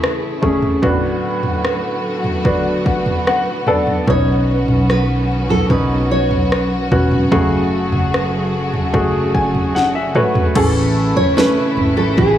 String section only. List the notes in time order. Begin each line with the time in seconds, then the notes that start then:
Already playing: C#3 E3 A3 E4 G#4
0.82 D3 F#3 A3 B3 F#4
4.07 D#3 C#4 F#4
7.32 C#3 A3 G#4
10.55 C#3 E3 A3 E4